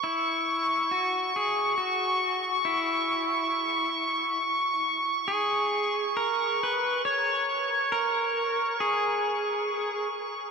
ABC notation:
X:1
M:3/4
L:1/8
Q:1/4=69
K:C#dor
V:1 name="Synth texture"
c'6- | c'6- | c'6- | c'6 |]
V:2 name="Pedal steel guitar"
E2 F G F2 | E4 z2 | G2 A B c2 | A2 G3 z |]